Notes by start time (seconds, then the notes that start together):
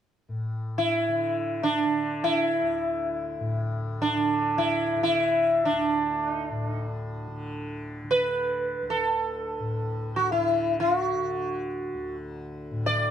0.29 A2
0.78 E4
1.08 D3
1.63 D4
1.86 D3
2.24 E4
2.62 D2
3.40 A2
4.02 D4
4.17 D3
4.58 E4
4.96 D3
5.03 E4
5.65 D4
5.72 D2
6.31 D#4
6.48 A2 D4
6.68 D#4
6.85 D4
7.27 D3
8.04 D3
8.11 B4
8.82 D2
8.90 A4
9.59 A2
10.16 F#4
10.32 E4
10.38 D3
10.80 F4
10.98 F#4
11.15 D3
11.94 D2
12.71 A2
12.86 D5